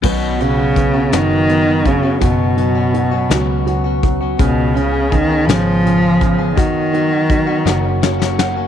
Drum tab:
CC |x-----------|------------|------------|------------|
HH |--x-x-x-x-x-|x-x-x-x-x-x-|x-x-x-x-x-x-|x-x-x-------|
SD |------o-----|------o-----|------o-----|------o-ooo-|
BD |o---o-----o-|o---------o-|o---o-----o-|o---o-------|